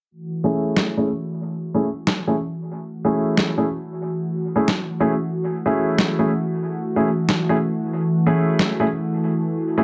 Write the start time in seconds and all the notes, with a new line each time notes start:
0.11 E3 A3 F#4
0.44 A3 C#4 E4 G#4
0.77 snare
0.97 A3 C#4 E4 G#4
1.74 A3 C#4 E4 G#4
2.07 snare
2.27 A3 C#4 E4 G#4
3.05 A3 C#4 E4 G#4
3.37 snare
3.58 A3 C#4 E4 G#4
4.56 A3 C#4 E4 G#4
4.68 snare
5.00 A3 C#4 E4 G#4
5.66 A3 C#4 E4 G#4
5.98 snare
6.19 A3 C#4 E4 G#4
6.96 A3 C#4 E4 G#4
7.29 snare
7.49 A3 C#4 E4 G#4
8.26 A3 C#4 E4 G#4
8.59 snare
8.80 A3 C#4 E4 G#4
9.78 A3 C#4 E4 G#4